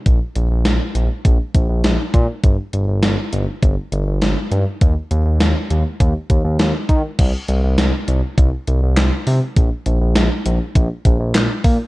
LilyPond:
<<
  \new Staff \with { instrumentName = "Analog synth bass" } { \clef bass \time 4/4 \key bes \mixolydian \tempo 4 = 101 bes,,16 r16 bes,,16 bes,,16 bes,,16 r16 bes,,16 r16 bes,,16 r16 bes,,16 bes,,16 bes,,16 r16 bes,16 r16 | g,,16 r16 g,,16 g,,16 g,,16 r16 g,,16 r16 g,,16 r16 g,,16 g,,16 g,,16 r16 g,16 r16 | ees,16 r16 ees,16 ees,16 ees,16 r16 ees,16 r16 ees,16 r16 ees,16 ees,16 ees,16 r16 ees16 r16 | c,16 r16 c,16 c,16 c,16 r16 c,16 r16 c,16 r16 c,16 c,16 c,16 r16 c16 r16 |
bes,,16 r16 bes,,16 bes,,16 bes,,16 r16 bes,,16 r16 bes,,16 r16 bes,,16 bes,,16 bes,,16 r16 bes,16 r16 | }
  \new DrumStaff \with { instrumentName = "Drums" } \drummode { \time 4/4 <hh bd>8 hh8 <hh sn>8 hh8 <hh bd>8 <hh bd>8 <hh sn>8 <hh bd>8 | <hh bd>8 hh8 <hh sn>8 hh8 <hh bd>8 hh8 <hh sn>8 hh8 | <hh bd>8 hh8 <hh sn>8 hh8 <hh bd>8 <hh bd>8 <hh sn>8 <hh bd>8 | <cymc hh bd>8 hh8 <hh sn>8 hh8 <hh bd>8 hh8 <hc hh sn>8 hho8 |
<hh bd>8 hh8 <hh sn>8 hh8 <hh bd>8 <hh bd>8 <hc hh sn>8 <hho bd>8 | }
>>